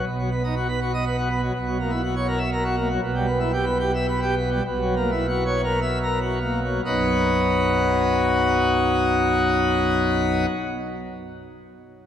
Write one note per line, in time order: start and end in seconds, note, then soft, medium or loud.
0.07 1.51 B1 medium
0.07 1.51 B2 medium
0.19 0.30 F#3 medium
0.32 0.42 B3 medium
0.44 0.55 D#4 medium
0.57 0.67 F#4 medium
0.69 0.80 B4 medium
0.82 0.92 F#4 medium
0.94 1.04 D#5 medium
1.06 1.17 B4 medium
1.18 1.29 F#4 medium
1.30 1.41 B3 medium
1.43 1.53 F#3 medium
1.53 2.98 B1 medium
1.53 2.98 B2 medium
1.67 1.78 F#3 medium
1.80 1.90 A#3 medium
1.90 2.01 E4 medium
2.04 2.15 F#4 medium
2.16 2.27 C#5 medium
2.28 2.39 A#4 medium
2.38 2.50 E5 medium
2.52 2.63 A#4 medium
2.64 2.76 F#4 medium
2.77 2.88 A#3 medium
2.90 3.00 F#3 medium
3.02 4.60 B1 medium
3.02 4.61 B2 medium
3.15 3.26 G3 medium
3.27 3.39 B3 medium
3.40 3.52 E4 medium
3.53 3.65 G4 medium
3.66 3.78 B4 medium
3.80 3.92 G4 medium
3.95 4.06 E5 loud
4.08 4.20 B4 medium
4.23 4.35 G4 medium
4.37 4.49 B3 medium
4.51 4.63 G3 medium
4.65 6.79 B1 loud
4.65 6.79 B2 loud
4.81 4.95 F#3 medium
4.96 5.10 A#3 medium
5.11 5.26 E4 medium
5.29 5.44 F#4 medium
5.46 5.61 C#5 medium
5.63 5.79 A#4 medium
5.82 5.98 E5 medium
6.03 6.19 A#4 medium
6.21 6.39 F#4 medium
6.41 6.59 A#3 medium
6.64 6.81 F#3 medium
6.85 10.46 B1 medium
6.85 10.45 F#2 medium
6.85 10.46 F#3 medium
6.85 10.46 B3 medium
6.85 10.46 D#4 medium
6.85 10.46 F#4 medium